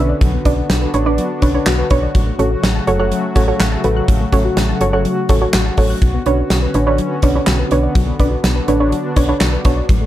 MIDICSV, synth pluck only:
0, 0, Header, 1, 2, 480
1, 0, Start_track
1, 0, Key_signature, 2, "minor"
1, 0, Tempo, 483871
1, 211, Time_signature, 4, 2, 24, 8
1, 9982, End_track
2, 0, Start_track
2, 0, Title_t, "Synth pluck"
2, 0, Program_c, 0, 84
2, 0, Note_on_c, 0, 62, 88
2, 0, Note_on_c, 0, 71, 76
2, 0, Note_on_c, 0, 76, 93
2, 109, Note_off_c, 0, 62, 0
2, 110, Note_off_c, 0, 71, 0
2, 110, Note_off_c, 0, 76, 0
2, 451, Note_on_c, 0, 62, 88
2, 452, Note_on_c, 0, 71, 78
2, 452, Note_on_c, 0, 74, 97
2, 590, Note_off_c, 0, 62, 0
2, 590, Note_off_c, 0, 71, 0
2, 590, Note_off_c, 0, 74, 0
2, 931, Note_on_c, 0, 71, 80
2, 932, Note_on_c, 0, 62, 86
2, 932, Note_on_c, 0, 73, 93
2, 1000, Note_off_c, 0, 71, 0
2, 1001, Note_off_c, 0, 62, 0
2, 1001, Note_off_c, 0, 73, 0
2, 1052, Note_on_c, 0, 62, 84
2, 1052, Note_on_c, 0, 71, 77
2, 1052, Note_on_c, 0, 74, 91
2, 1190, Note_off_c, 0, 62, 0
2, 1190, Note_off_c, 0, 71, 0
2, 1190, Note_off_c, 0, 74, 0
2, 1411, Note_on_c, 0, 71, 83
2, 1411, Note_on_c, 0, 73, 100
2, 1412, Note_on_c, 0, 62, 92
2, 1480, Note_off_c, 0, 71, 0
2, 1480, Note_off_c, 0, 73, 0
2, 1481, Note_off_c, 0, 62, 0
2, 1531, Note_on_c, 0, 62, 77
2, 1531, Note_on_c, 0, 71, 71
2, 1532, Note_on_c, 0, 73, 92
2, 1669, Note_off_c, 0, 62, 0
2, 1669, Note_off_c, 0, 71, 0
2, 1670, Note_off_c, 0, 73, 0
2, 1891, Note_on_c, 0, 62, 83
2, 1892, Note_on_c, 0, 71, 78
2, 1892, Note_on_c, 0, 73, 98
2, 2030, Note_off_c, 0, 62, 0
2, 2030, Note_off_c, 0, 71, 0
2, 2030, Note_off_c, 0, 73, 0
2, 2371, Note_on_c, 0, 69, 78
2, 2371, Note_on_c, 0, 73, 96
2, 2372, Note_on_c, 0, 66, 86
2, 2509, Note_off_c, 0, 69, 0
2, 2509, Note_off_c, 0, 73, 0
2, 2510, Note_off_c, 0, 66, 0
2, 2850, Note_on_c, 0, 73, 97
2, 2851, Note_on_c, 0, 66, 86
2, 2851, Note_on_c, 0, 69, 79
2, 2920, Note_off_c, 0, 66, 0
2, 2920, Note_off_c, 0, 69, 0
2, 2920, Note_off_c, 0, 73, 0
2, 2970, Note_on_c, 0, 73, 90
2, 2971, Note_on_c, 0, 66, 83
2, 2971, Note_on_c, 0, 69, 74
2, 3109, Note_off_c, 0, 66, 0
2, 3109, Note_off_c, 0, 69, 0
2, 3109, Note_off_c, 0, 73, 0
2, 3330, Note_on_c, 0, 66, 92
2, 3330, Note_on_c, 0, 69, 83
2, 3330, Note_on_c, 0, 73, 101
2, 3400, Note_off_c, 0, 66, 0
2, 3400, Note_off_c, 0, 69, 0
2, 3400, Note_off_c, 0, 73, 0
2, 3449, Note_on_c, 0, 66, 80
2, 3449, Note_on_c, 0, 69, 73
2, 3450, Note_on_c, 0, 73, 87
2, 3588, Note_off_c, 0, 66, 0
2, 3588, Note_off_c, 0, 69, 0
2, 3589, Note_off_c, 0, 73, 0
2, 3810, Note_on_c, 0, 69, 79
2, 3811, Note_on_c, 0, 66, 83
2, 3811, Note_on_c, 0, 71, 97
2, 3949, Note_off_c, 0, 69, 0
2, 3949, Note_off_c, 0, 71, 0
2, 3950, Note_off_c, 0, 66, 0
2, 4291, Note_on_c, 0, 66, 88
2, 4291, Note_on_c, 0, 69, 81
2, 4291, Note_on_c, 0, 73, 96
2, 4429, Note_off_c, 0, 73, 0
2, 4430, Note_off_c, 0, 66, 0
2, 4430, Note_off_c, 0, 69, 0
2, 4771, Note_on_c, 0, 66, 83
2, 4771, Note_on_c, 0, 69, 80
2, 4771, Note_on_c, 0, 73, 93
2, 4840, Note_off_c, 0, 66, 0
2, 4840, Note_off_c, 0, 69, 0
2, 4840, Note_off_c, 0, 73, 0
2, 4890, Note_on_c, 0, 69, 77
2, 4890, Note_on_c, 0, 73, 93
2, 4891, Note_on_c, 0, 66, 83
2, 5029, Note_off_c, 0, 66, 0
2, 5029, Note_off_c, 0, 69, 0
2, 5029, Note_off_c, 0, 73, 0
2, 5251, Note_on_c, 0, 66, 88
2, 5251, Note_on_c, 0, 69, 83
2, 5251, Note_on_c, 0, 73, 99
2, 5320, Note_off_c, 0, 66, 0
2, 5320, Note_off_c, 0, 69, 0
2, 5320, Note_off_c, 0, 73, 0
2, 5370, Note_on_c, 0, 66, 81
2, 5371, Note_on_c, 0, 69, 73
2, 5371, Note_on_c, 0, 73, 89
2, 5509, Note_off_c, 0, 66, 0
2, 5509, Note_off_c, 0, 73, 0
2, 5510, Note_off_c, 0, 69, 0
2, 5731, Note_on_c, 0, 66, 87
2, 5731, Note_on_c, 0, 69, 80
2, 5731, Note_on_c, 0, 73, 94
2, 5869, Note_off_c, 0, 69, 0
2, 5869, Note_off_c, 0, 73, 0
2, 5870, Note_off_c, 0, 66, 0
2, 6212, Note_on_c, 0, 62, 88
2, 6212, Note_on_c, 0, 71, 80
2, 6213, Note_on_c, 0, 73, 97
2, 6350, Note_off_c, 0, 62, 0
2, 6350, Note_off_c, 0, 71, 0
2, 6350, Note_off_c, 0, 73, 0
2, 6693, Note_on_c, 0, 62, 88
2, 6693, Note_on_c, 0, 71, 79
2, 6693, Note_on_c, 0, 73, 93
2, 6761, Note_off_c, 0, 62, 0
2, 6761, Note_off_c, 0, 71, 0
2, 6761, Note_off_c, 0, 73, 0
2, 6813, Note_on_c, 0, 62, 85
2, 6813, Note_on_c, 0, 71, 76
2, 6813, Note_on_c, 0, 73, 95
2, 6950, Note_off_c, 0, 71, 0
2, 6950, Note_off_c, 0, 73, 0
2, 6951, Note_off_c, 0, 62, 0
2, 7173, Note_on_c, 0, 71, 84
2, 7174, Note_on_c, 0, 62, 90
2, 7174, Note_on_c, 0, 73, 99
2, 7241, Note_off_c, 0, 71, 0
2, 7242, Note_off_c, 0, 62, 0
2, 7242, Note_off_c, 0, 73, 0
2, 7295, Note_on_c, 0, 71, 71
2, 7295, Note_on_c, 0, 73, 89
2, 7296, Note_on_c, 0, 62, 79
2, 7431, Note_off_c, 0, 71, 0
2, 7432, Note_off_c, 0, 62, 0
2, 7432, Note_off_c, 0, 73, 0
2, 7654, Note_on_c, 0, 62, 88
2, 7655, Note_on_c, 0, 71, 79
2, 7655, Note_on_c, 0, 73, 95
2, 7791, Note_off_c, 0, 62, 0
2, 7791, Note_off_c, 0, 71, 0
2, 7791, Note_off_c, 0, 73, 0
2, 8132, Note_on_c, 0, 62, 86
2, 8132, Note_on_c, 0, 71, 82
2, 8132, Note_on_c, 0, 74, 98
2, 8270, Note_off_c, 0, 62, 0
2, 8270, Note_off_c, 0, 71, 0
2, 8270, Note_off_c, 0, 74, 0
2, 8612, Note_on_c, 0, 62, 87
2, 8612, Note_on_c, 0, 71, 81
2, 8612, Note_on_c, 0, 73, 95
2, 8681, Note_off_c, 0, 62, 0
2, 8681, Note_off_c, 0, 71, 0
2, 8681, Note_off_c, 0, 73, 0
2, 8731, Note_on_c, 0, 71, 77
2, 8732, Note_on_c, 0, 62, 81
2, 8732, Note_on_c, 0, 73, 91
2, 8870, Note_off_c, 0, 62, 0
2, 8870, Note_off_c, 0, 71, 0
2, 8870, Note_off_c, 0, 73, 0
2, 9091, Note_on_c, 0, 73, 100
2, 9092, Note_on_c, 0, 62, 90
2, 9092, Note_on_c, 0, 71, 83
2, 9160, Note_off_c, 0, 73, 0
2, 9161, Note_off_c, 0, 62, 0
2, 9161, Note_off_c, 0, 71, 0
2, 9212, Note_on_c, 0, 71, 74
2, 9213, Note_on_c, 0, 62, 81
2, 9213, Note_on_c, 0, 73, 92
2, 9350, Note_off_c, 0, 62, 0
2, 9350, Note_off_c, 0, 71, 0
2, 9350, Note_off_c, 0, 73, 0
2, 9572, Note_on_c, 0, 62, 85
2, 9573, Note_on_c, 0, 71, 79
2, 9573, Note_on_c, 0, 73, 97
2, 9710, Note_off_c, 0, 62, 0
2, 9710, Note_off_c, 0, 71, 0
2, 9710, Note_off_c, 0, 73, 0
2, 9982, End_track
0, 0, End_of_file